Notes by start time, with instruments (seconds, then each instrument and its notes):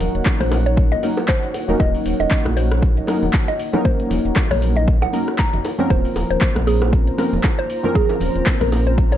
Already playing: synth keys F#3 A#3 C#4 D#4 A#4, analog synth pad A#3 D#4 F#4 C#5, ambient pad D#4 C#5 F#5
0.00 sub bass D#1, open hi-hat, low conga
0.15 sub bass D#1, closed hi-hat
0.26 kick, clap, closed hi-hat, high bongo
0.40 sub bass A#1, synth pluck C5, cross-stick, open hi-hat, high conga, low conga
0.52 open hi-hat, high bongo
0.66 synth pluck C#5, closed hi-hat
0.77 kick, closed hi-hat
0.92 synth pluck D#5, closed hi-hat, high bongo
1.03 synth keys F#3 A#3 C#4 D#4 A#4, open hi-hat, high conga
1.17 high bongo
1.28 synth pluck C5, kick, clap, closed hi-hat
1.43 closed hi-hat
1.54 open hi-hat, high bongo
1.68 sub bass D#1, synth keys F#3 A#3 C#4 D#4 A#4, high conga
1.80 sub bass D#1, synth pluck D#5, kick, closed hi-hat, high bongo
1.95 open hi-hat
2.06 sub bass D#1, open hi-hat
2.20 sub bass D#1, synth pluck D#5, closed hi-hat, high bongo
2.31 kick, clap, closed hi-hat
2.45 sub bass A#1, cross-stick, closed hi-hat, high bongo, high conga
2.57 synth pluck C5, open hi-hat
2.72 cross-stick, closed hi-hat
2.82 kick, closed hi-hat, high bongo
2.97 closed hi-hat
3.07 synth keys F#3 A#3 C#4 D#4 A#4, cross-stick, open hi-hat, high bongo, high conga
3.23 sub bass D#1, low conga
3.33 kick, clap, closed hi-hat
3.48 synth pluck D#5, closed hi-hat, high bongo
3.59 open hi-hat
3.73 synth keys F#3 A#3 C#4 D#4 A#4, high bongo, high conga, low conga
3.85 synth pluck C5, kick, closed hi-hat
4.00 closed hi-hat
4.10 sub bass D#1, open hi-hat, high bongo, low conga
4.25 sub bass D#1, closed hi-hat
4.36 kick, clap, closed hi-hat, high bongo
4.50 sub bass A#1, synth pluck C#5, cross-stick, open hi-hat, high conga, low conga
4.62 open hi-hat
4.76 synth pluck D#5, closed hi-hat, high bongo
4.88 kick, closed hi-hat
5.02 synth pluck F#5, closed hi-hat, high bongo
5.13 synth keys F#3 A#3 C#4 D#4 A#4, open hi-hat, high conga
5.28 cross-stick
5.39 synth pluck A#5, kick, clap, closed hi-hat, high bongo
5.53 sub bass F#1, closed hi-hat, low conga
5.65 open hi-hat, high bongo
5.78 synth keys F3 A#3 C4 C#4 A#4, high conga
5.90 sub bass D#1, analog synth pad A#3 F4 C5, synth pluck C5, kick, closed hi-hat, high bongo
6.05 open hi-hat
6.16 sub bass D#1, open hi-hat, high bongo
6.22 ambient pad C5
6.30 sub bass D#1, synth pluck C5, closed hi-hat
6.41 kick, clap, closed hi-hat
6.55 sub bass A#1, cross-stick, closed hi-hat, high bongo, high conga
6.63 synth pluck G#4, ambient pad A#5, open hi-hat
6.82 cross-stick, closed hi-hat, high bongo
6.93 kick, closed hi-hat
7.07 closed hi-hat
7.18 synth keys F3 A#3 C4 C#4 A#4, cross-stick, open hi-hat, high bongo, high conga
7.33 sub bass D#1, low conga
7.44 kick, clap, closed hi-hat, high bongo
7.59 synth pluck C5, closed hi-hat
7.70 open hi-hat
7.83 synth keys F3 A#3 C4 C#4 A#4, high bongo, high conga, low conga
7.95 synth pluck G#4, kick, closed hi-hat
8.09 closed hi-hat, high bongo
8.20 sub bass D#1, open hi-hat, low conga
8.36 sub bass D#1, closed hi-hat
8.46 kick, clap, closed hi-hat, high bongo
8.61 sub bass A#1, synth pluck A#4, cross-stick, open hi-hat, high conga, low conga
8.72 open hi-hat, high bongo
8.87 synth pluck C5, closed hi-hat
8.98 kick, closed hi-hat
9.12 synth pluck C#5, closed hi-hat, high bongo